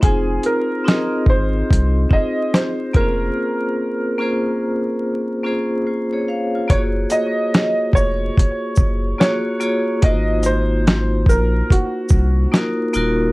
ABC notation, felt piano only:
X:1
M:4/4
L:1/8
Q:"Swing 16ths" 1/4=72
K:Gblyd
V:1 name="Felt piano"
A B2 c2 e c B- | B4- B z3 | d e2 d3 d2 | e c2 B G2 z2 |]